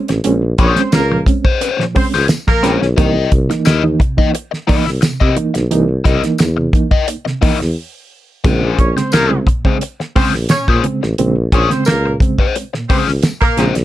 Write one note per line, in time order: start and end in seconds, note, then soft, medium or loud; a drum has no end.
0.08 0.22 A1 medium
0.08 0.15 C4 soft
0.08 0.15 C#4 soft
0.08 muted overdriven electric guitar stroke medium
0.08 snare soft
0.08 closed hi-hat medium
0.24 0.53 A#1 loud
0.24 0.41 G#3 loud
0.24 0.41 C4 medium
0.24 0.41 C#4 loud
0.24 closed hi-hat loud
0.58 0.74 A#1 loud
0.58 0.75 A#2 medium
0.58 0.75 F3 medium
0.58 0.80 C#4 medium
0.58 0.74 C#4 medium
0.58 0.80 G#4 loud
0.58 0.80 C5 medium
0.58 0.74 C#5 loud
0.58 kick medium
0.58 closed hi-hat medium
0.76 0.91 G#3 medium
0.76 0.91 C4 medium
0.76 0.90 C4 medium
0.76 0.91 C#4 medium
0.76 0.90 C5 medium
0.76 snare soft
0.76 closed hi-hat medium
0.92 1.21 C#2 medium
0.92 1.21 A#3 loud
0.92 1.00 C4 soft
0.92 1.00 C#4 soft
0.92 1.21 A#4 loud
0.92 muted overdriven electric guitar stroke soft
0.92 snare loud
0.92 closed hi-hat medium
0.92 tambourine medium
1.11 1.26 A#2 medium
1.11 1.26 F3 medium
1.11 muted overdriven electric guitar stroke soft
1.26 1.43 G#3 medium
1.26 1.43 C4 medium
1.26 1.44 C#4 medium
1.26 kick medium
1.26 closed hi-hat medium
1.45 1.60 C#4 medium
1.45 1.60 G#4 medium
1.45 1.59 C5 medium
1.45 kick medium
1.61 1.68 C4 soft
1.61 1.68 C#4 soft
1.61 1.82 C#4 medium
1.61 1.83 G#4 medium
1.61 1.83 C5 medium
1.61 closed hi-hat medium
1.79 1.94 A#2 medium
1.79 1.94 F3 medium
1.79 snare soft
1.95 2.03 C#2 medium
1.95 2.11 G#3 medium
1.95 2.11 C4 medium
1.95 2.07 C4 medium
1.95 2.12 C#4 medium
1.95 2.06 C5 loud
1.95 muted overdriven electric guitar stroke soft
1.95 kick medium
1.95 open hi-hat medium
2.13 2.27 C#2 medium
2.13 2.26 C#4 medium
2.13 2.25 G#4 medium
2.13 2.25 C5 medium
2.13 snare soft
2.28 2.37 C4 soft
2.28 2.37 C#4 soft
2.28 snare loud
2.28 closed hi-hat medium
2.28 tambourine medium
2.47 2.62 A#2 medium
2.47 2.62 F3 medium
2.47 2.75 A#3 loud
2.47 2.75 A#4 loud
2.47 muted overdriven electric guitar stroke medium
2.47 kick medium
2.47 snare soft
2.63 2.79 A#1 medium
2.63 2.80 G#3 medium
2.63 2.80 C4 medium
2.63 2.84 C#4 medium
2.63 2.80 C#4 medium
2.63 2.81 G#4 medium
2.63 2.80 C5 loud
2.63 snare soft
2.63 closed hi-hat medium
2.81 2.95 B1 loud
2.81 muted overdriven electric guitar stroke medium
2.81 snare soft
2.96 3.26 C2 loud
2.96 3.14 E3 loud
2.96 3.14 A#3 medium
2.96 3.14 D#4 loud
2.96 3.29 E4 medium
2.96 3.29 A#4 loud
2.96 3.29 D#5 loud
2.96 kick loud
2.96 closed hi-hat loud
3.32 3.47 C2 loud
3.32 3.48 C3 medium
3.32 kick medium
3.32 closed hi-hat medium
3.50 3.64 E3 medium
3.50 3.64 A#3 medium
3.50 3.65 D#4 medium
3.50 muted overdriven electric guitar stroke soft
3.50 snare soft
3.50 closed hi-hat medium
3.65 3.95 D#2 medium
3.65 3.82 E4 medium
3.65 3.82 A#4 medium
3.65 3.82 D#5 loud
3.65 snare loud
3.65 closed hi-hat medium
3.65 tambourine medium
3.83 3.98 E3 medium
3.83 3.98 A#3 medium
3.83 3.99 D#4 medium
4.00 4.16 C3 medium
4.00 muted overdriven electric guitar stroke soft
4.00 kick medium
4.00 closed hi-hat medium
4.17 4.32 E3 medium
4.17 4.33 A#3 medium
4.17 4.33 D#4 medium
4.17 4.30 E4 soft
4.17 4.30 A#4 medium
4.17 4.29 D#5 medium
4.17 kick medium
4.34 muted overdriven electric guitar stroke soft
4.34 closed hi-hat loud
4.51 muted overdriven electric guitar stroke soft
4.51 snare soft
4.67 4.77 C2 soft
4.67 4.84 E3 medium
4.67 4.85 A#3 medium
4.67 4.85 D#4 loud
4.67 4.89 E4 medium
4.67 4.86 A#4 medium
4.67 4.86 D#5 medium
4.67 kick medium
4.67 open hi-hat medium
4.87 5.00 C2 medium
4.87 muted overdriven electric guitar stroke soft
4.87 snare soft
5.01 5.19 C3 medium
5.01 muted overdriven electric guitar stroke soft
5.01 snare loud
5.01 closed hi-hat medium
5.01 tambourine medium
5.20 5.35 C3 medium
5.20 5.35 E4 medium
5.20 5.35 A#4 medium
5.20 5.35 D#5 medium
5.20 kick medium
5.36 5.53 E3 medium
5.36 5.53 A#3 medium
5.36 5.53 D#4 medium
5.36 muted overdriven electric guitar stroke soft
5.36 closed hi-hat medium
5.54 5.68 B1 medium
5.54 muted overdriven electric guitar stroke soft
5.54 snare soft
5.54 closed hi-hat medium
5.71 6.00 C2 loud
5.71 5.87 E3 loud
5.71 5.87 A#3 medium
5.71 5.88 D#4 loud
5.71 closed hi-hat medium
6.04 6.20 C2 loud
6.04 6.22 C3 medium
6.04 6.21 E4 medium
6.04 6.21 A#4 medium
6.04 6.21 D#5 loud
6.04 kick medium
6.04 closed hi-hat medium
6.23 6.38 E3 medium
6.23 6.38 A#3 medium
6.23 6.38 D#4 medium
6.23 snare soft
6.23 closed hi-hat medium
6.38 6.68 E2 medium
6.38 6.47 A#3 soft
6.38 6.47 D#4 soft
6.38 muted overdriven electric guitar stroke soft
6.38 snare loud
6.38 closed hi-hat medium
6.38 tambourine loud
6.57 6.72 C3 medium
6.57 muted overdriven electric guitar stroke soft
6.73 6.90 E3 medium
6.73 6.90 A#3 medium
6.73 6.90 D#4 medium
6.73 kick medium
6.73 closed hi-hat medium
6.91 7.06 E4 medium
6.91 7.06 A#4 medium
6.91 7.06 D#5 medium
6.91 kick medium
7.07 7.15 A#3 soft
7.07 7.15 D#4 soft
7.07 muted overdriven electric guitar stroke soft
7.07 closed hi-hat loud
7.25 7.40 C3 medium
7.25 muted overdriven electric guitar stroke medium
7.25 snare soft
7.41 7.50 E2 medium
7.41 7.58 E3 medium
7.41 7.58 A#3 medium
7.41 7.58 D#4 medium
7.41 7.58 E4 medium
7.41 7.58 A#4 medium
7.41 7.58 D#5 medium
7.41 kick loud
7.41 open hi-hat medium
7.60 7.74 E2 medium
7.60 muted overdriven electric guitar stroke soft
7.60 snare soft
8.44 8.73 A#1 loud
8.44 8.61 C#3 medium
8.44 8.61 G#3 medium
8.44 8.61 C4 loud
8.44 8.76 C#4 loud
8.44 8.77 G#4 loud
8.44 8.77 C5 loud
8.44 kick loud
8.44 closed hi-hat loud
8.78 8.94 A#1 loud
8.78 8.95 A#2 medium
8.78 8.93 C#4 medium
8.78 8.93 C#5 medium
8.78 kick medium
8.78 closed hi-hat medium
8.96 9.11 C#3 medium
8.96 9.11 G#3 medium
8.96 9.11 C4 medium
8.96 9.10 C4 medium
8.96 9.10 C5 medium
8.96 muted overdriven electric guitar stroke soft
8.96 snare soft
8.96 closed hi-hat medium
9.12 9.41 C2 medium
9.12 9.40 A#3 loud
9.12 9.29 C#4 medium
9.12 9.29 G#4 medium
9.12 9.40 A#4 loud
9.12 9.29 C5 medium
9.12 snare loud
9.12 closed hi-hat medium
9.12 tambourine medium
9.30 9.45 C#3 medium
9.30 9.45 G#3 medium
9.30 9.45 C4 medium
9.47 9.63 A#2 medium
9.47 muted overdriven electric guitar stroke soft
9.47 kick medium
9.47 closed hi-hat medium
9.65 9.80 C#3 medium
9.65 9.80 G#3 medium
9.65 9.80 C4 medium
9.65 9.77 C#4 medium
9.65 9.77 G#4 medium
9.65 9.76 C5 medium
9.65 kick medium
9.81 muted overdriven electric guitar stroke soft
9.81 closed hi-hat loud
10.00 muted overdriven electric guitar stroke soft
10.00 snare soft
10.16 10.23 A#1 medium
10.16 10.32 C#3 medium
10.16 10.32 G#3 medium
10.16 10.32 C4 loud
10.16 10.27 C4 medium
10.16 10.31 C#4 medium
10.16 10.32 G#4 medium
10.16 10.27 C5 loud
10.16 10.32 C5 loud
10.16 kick loud
10.16 open hi-hat medium
10.34 10.47 A#1 medium
10.34 muted overdriven electric guitar stroke medium
10.34 snare soft
10.49 10.66 A#2 medium
10.49 10.77 C#4 loud
10.49 10.77 C#5 loud
10.49 muted overdriven electric guitar stroke soft
10.49 snare loud
10.49 closed hi-hat medium
10.49 tambourine medium
10.68 10.81 A#2 medium
10.68 10.83 C#4 medium
10.68 10.83 G#4 medium
10.68 10.82 C5 medium
10.68 kick medium
10.84 11.00 C#3 medium
10.84 11.00 G#3 medium
10.84 11.00 C4 medium
10.84 muted overdriven electric guitar stroke soft
10.84 closed hi-hat medium
11.02 11.16 A1 medium
11.02 11.09 G#3 soft
11.02 11.09 C4 soft
11.02 muted overdriven electric guitar stroke medium
11.02 snare soft
11.18 11.46 A#1 loud
11.18 11.34 C#3 medium
11.18 11.35 G#3 medium
11.18 11.35 C4 loud
11.18 closed hi-hat medium
11.52 11.67 A#1 loud
11.52 11.69 A#2 medium
11.52 11.67 C#4 medium
11.52 11.68 C#4 medium
11.52 11.69 G#4 loud
11.52 11.69 C5 medium
11.52 11.67 C#5 loud
11.52 kick medium
11.52 closed hi-hat medium
11.70 11.85 C#3 medium
11.70 11.85 G#3 medium
11.70 11.85 C4 loud
11.70 11.84 C4 medium
11.70 11.84 C5 medium
11.70 snare soft
11.70 closed hi-hat medium
11.85 12.15 C#2 medium
11.85 12.13 A#3 loud
11.85 11.94 C4 soft
11.85 12.13 A#4 loud
11.85 muted overdriven electric guitar stroke soft
11.85 snare loud
11.85 closed hi-hat medium
11.85 tambourine medium
12.05 12.19 A#2 medium
12.05 muted overdriven electric guitar stroke soft
12.20 12.37 C#3 medium
12.20 12.37 G#3 medium
12.20 12.37 C4 medium
12.20 kick medium
12.20 closed hi-hat medium
12.38 12.54 C#4 medium
12.38 12.55 G#4 medium
12.38 12.55 C5 medium
12.38 kick medium
12.56 12.62 G#3 soft
12.56 12.62 C4 medium
12.56 muted overdriven electric guitar stroke soft
12.56 closed hi-hat medium
12.73 12.88 A#2 medium
12.73 muted overdriven electric guitar stroke soft
12.73 snare soft
12.89 12.97 C#2 medium
12.89 13.05 C#3 medium
12.89 13.05 G#3 medium
12.89 13.00 C4 medium
12.89 13.05 C4 medium
12.89 13.10 C#4 medium
12.89 13.08 G#4 loud
12.89 13.00 C5 medium
12.89 13.07 C5 medium
12.89 kick loud
12.89 open hi-hat medium
13.06 13.20 C#2 medium
13.06 muted overdriven electric guitar stroke soft
13.06 snare soft
13.22 13.30 G#3 soft
13.22 13.30 C4 soft
13.22 snare loud
13.22 closed hi-hat medium
13.22 tambourine medium
13.41 13.56 A#2 medium
13.41 13.68 A#3 loud
13.41 13.68 A#4 loud
13.41 muted overdriven electric guitar stroke soft
13.41 kick medium
13.41 snare soft
13.57 13.72 A#1 loud
13.57 13.73 C#3 medium
13.57 13.73 G#3 medium
13.57 13.73 C4 medium
13.57 13.74 C#4 medium
13.57 13.74 G#4 medium
13.57 13.74 C5 medium
13.57 snare soft
13.57 closed hi-hat medium
13.75 13.85 B1 loud
13.75 muted overdriven electric guitar stroke soft
13.75 snare soft
13.75 closed hi-hat medium